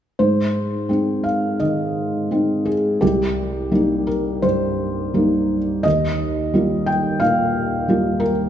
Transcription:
0.19 G#2 C5
0.89 G#3 C4 D#4
1.24 F5
1.60 D#3 D#5
2.31 G#3 C4 D#4
2.66 G#4
3.01 C2 G4
3.71 G3 A#3 D#4
4.07 A#4
4.42 G2 C5
5.14 G3 A#3 D#4
5.83 D#2 D#5
6.54 G3 A#3 F4
6.86 G5
7.20 A#2 F5
7.88 G3 A#3 F4
8.20 A#4

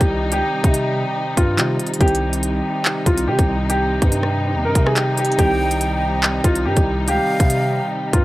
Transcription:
Already playing: C3 D#3 G3 C4 D#4 G4
0.01 C2, kick, closed hi-hat
0.32 C#2 G4, closed hi-hat
0.64 C3, kick, closed hi-hat
0.74 closed hi-hat
1.37 G2 F4, kick, closed hi-hat
1.58 C3 D#3 G3 C4 G4, clap, closed hi-hat
1.80 closed hi-hat
1.87 closed hi-hat
1.94 closed hi-hat
1.98 C2 D#3 G3 C4 D#4 G4, kick, closed hi-hat
2.08 closed hi-hat
2.15 closed hi-hat
2.33 closed hi-hat
2.43 closed hi-hat
2.85 clap
3.06 C2 F4, kick, closed hi-hat
3.18 closed hi-hat
3.27 C3 G4
3.39 C2, kick, closed hi-hat
3.70 G4, closed hi-hat
4.02 G2, kick, closed hi-hat
4.12 closed hi-hat
4.23 cross-stick
4.54 D#2
4.65 G2 A#4
4.75 C3, kick, closed hi-hat
4.86 G#4, cross-stick
4.96 G4, clap, closed hi-hat
5.17 G4, closed hi-hat
5.25 closed hi-hat
5.32 closed hi-hat
5.38 C2 D#3 G3 C4 G4 G5, kick, closed hi-hat
5.71 closed hi-hat
5.81 closed hi-hat
6.23 clap
6.44 C2 F4, kick, closed hi-hat
6.55 closed hi-hat
6.65 G2 G4
6.77 C2, kick, closed hi-hat
7.08 C#2 G4 F5, closed hi-hat
7.40 C3, kick, closed hi-hat
7.50 closed hi-hat
8.13 G2 F4, kick, closed hi-hat

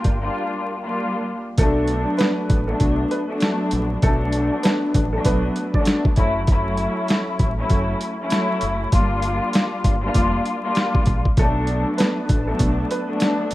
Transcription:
Already playing: G3 A#3 D4 F4 A#4 G5
0.04 G1, kick, closed hi-hat
0.22 G3 A#3 D4 F4
0.83 G3 A#3 D4 F4
1.58 B1 F#3 A3 B3 D4 A4, kick, closed hi-hat
1.88 closed hi-hat
2.18 B3 B4, snare, closed hi-hat
2.50 A1, kick, closed hi-hat
2.67 F#3 A3 B3 D4 A4
2.80 B1, kick, closed hi-hat
3.11 B3 B4, closed hi-hat
3.27 F#3 A3 B3 D4
3.40 snare, closed hi-hat
3.71 A#1, closed hi-hat
4.02 B1 F#3 A3 B3 D4 A4, kick, closed hi-hat
4.32 closed hi-hat
4.63 B3 B4, snare, closed hi-hat
4.94 A1, kick, closed hi-hat
5.13 F#3 A3 B3 D4 A4
5.25 B1 B3 B4, kick, closed hi-hat
5.56 closed hi-hat
5.74 F#3 A3 B3 D4 D5, kick
5.85 snare, closed hi-hat
6.05 kick
6.16 F#1 F#3 A3 C#4 E4, kick, closed hi-hat
6.47 F#3 A3 C#4 E4, kick, closed hi-hat
6.77 closed hi-hat
7.08 snare, closed hi-hat
7.39 A1, kick, closed hi-hat
7.57 F#3 A3 C#4 E4
7.70 F#1, kick, closed hi-hat
8.01 closed hi-hat
8.20 F#3 A3 C#4 E4
8.30 snare, closed hi-hat
8.61 F#1, closed hi-hat
8.92 G1 G3 A#3 D4 F4, kick, closed hi-hat
9.22 closed hi-hat
9.53 snare, closed hi-hat
9.84 G1, kick, closed hi-hat
10.01 G3 A#3 D4 F4
10.14 F1, kick, closed hi-hat
10.45 closed hi-hat
10.63 G3 A#3 D4 F4
10.75 snare, closed hi-hat
10.95 kick
11.06 A#1, kick, closed hi-hat
11.25 kick
11.37 B1 F#3 A3 B3 D4 A4 B4 A5, kick, closed hi-hat
11.67 closed hi-hat
11.98 B3 B4, snare, closed hi-hat
12.29 A1, kick, closed hi-hat
12.47 F#3 A3 B3 D4 A4
12.59 B1, kick, closed hi-hat
12.91 B3 B4, closed hi-hat
13.06 F#3 A3 B3 D4
13.20 snare, closed hi-hat
13.51 closed hi-hat

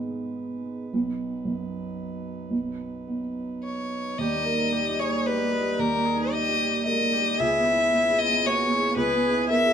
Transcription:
Already playing: G#2 D#3 G#3 B3 D#4 B4
0.93 B1 F#3
1.45 F#2
2.51 B1
3.07 B3
3.63 C#5
4.18 D#2 G3 D#4 G4 D#5 A#5
4.35 A#3
4.45 A#4
4.53 D#4
4.70 A#3 G4
4.89 G4
4.99 G#4 C#5
5.07 A#3
5.26 G#3 G4 B4
5.43 A#3
5.54 D#4
5.61 G4
5.79 D#2 G4 A#4
5.96 A#3
6.06 G#4
6.14 D#4
6.32 A#3 G4 D#5
6.49 G4
6.68 A#3
6.85 G#3 A#4 D#5
7.04 A#3
7.13 G4
7.22 G4
7.38 C#2 G#3 C#4 G#4 B4 E5
7.58 B3
7.65 E4
7.74 E4
7.92 B3
8.10 G#4
8.19 D#5
8.28 B3
8.45 A#3 F#4 C#5
8.63 B3
8.72 E4
8.79 G#4
8.96 C#2 G#4 B4
9.14 B3
9.30 E4
9.49 B3 A#4 E5
9.66 G#4

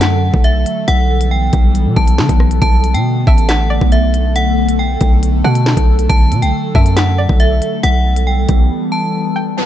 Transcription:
Already playing: F#2 D3 F#3 A3 A4
0.01 F#5, snare, clap, closed hi-hat
0.34 B1, kick
0.44 E5, closed hi-hat
0.66 closed hi-hat
0.88 B1 E3 G3 B3 F#5, closed hi-hat
1.21 closed hi-hat
1.31 G5
1.53 B1, kick, closed hi-hat
1.75 closed hi-hat
1.86 B2
1.96 B1 A5, kick
2.08 closed hi-hat
2.18 D3, snare, clap
2.29 B1, kick, closed hi-hat
2.40 cross-stick
2.51 closed hi-hat
2.62 B1 D3 A3 A4 A5, kick, closed hi-hat
2.84 closed hi-hat
2.94 B2 G5, closed hi-hat
3.27 A1 E5 A5, kick
3.38 closed hi-hat
3.49 F#5, snare, clap, closed hi-hat
3.70 D5
3.81 B1, kick
3.92 E5, closed hi-hat
4.14 closed hi-hat
4.36 F#5, closed hi-hat
4.69 closed hi-hat
4.79 G5
5.01 B1, kick, closed hi-hat
5.23 closed hi-hat
5.44 B2 F#5 A5
5.55 closed hi-hat
5.66 snare, clap
5.77 B1, kick, closed hi-hat
5.99 closed hi-hat
6.09 B1 F#3 A5, kick, closed hi-hat
6.31 B2, closed hi-hat
6.42 B1 G5, closed hi-hat
6.75 F#2 E5 A5, kick
6.86 closed hi-hat
6.97 F#5, snare, clap, closed hi-hat
7.18 D5
7.29 B1, kick
7.40 E5, closed hi-hat
7.62 closed hi-hat
7.83 B1 E3 G3 B3 F#5, closed hi-hat
8.16 closed hi-hat
8.27 G5
8.49 B1, kick, closed hi-hat
8.92 A5
9.36 G5
9.57 F#3 B3 D4 A4 A5, downlifter

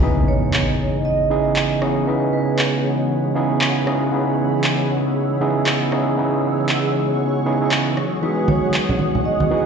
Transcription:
0.01 C#3 E3 B3 D#4 E4 G#4 B4 C#5 D#5, impact
0.27 C#5 F#5
0.31 C#5
0.54 clap
1.05 D#5
1.30 C#3 B3 D#4 E4 G#4
1.56 clap
1.79 C#3 B3 D#4 E4 G#4 C#5 B5, cross-stick
2.06 C#3 B3 D#4 E4 G#4 B4
2.33 B4
2.59 clap
3.35 C#3 B3 D#4 E4 G#4
3.61 clap
3.86 C#3 B3 D#4 E4 G#4, cross-stick
4.11 C#3 B3 D#4 E4 G#4 E6
4.64 clap
5.40 C#3 B3 D#4 E4 G#4
5.63 C#6, clap
5.91 C#3 B3 D#4 E4 G#4, cross-stick
6.17 C#3 B3 D#4 E4 G#4
6.69 clap
7.45 C#3 B3 D#4 E4 G#4
7.61 C#3 B3 D#4 E4 G#4
7.71 clap
7.97 E3 F#3 G#3 F#4 D#6, cross-stick
8.22 E3 B3 D#4 F#4 G#4 B4 F#5 F#6
8.48 C#5, high conga
8.74 clap
8.89 low conga
8.99 high conga
9.15 low conga
9.25 D#5
9.40 high conga
9.50 E3 B3 D#4 F#4 G#4
9.58 G#5

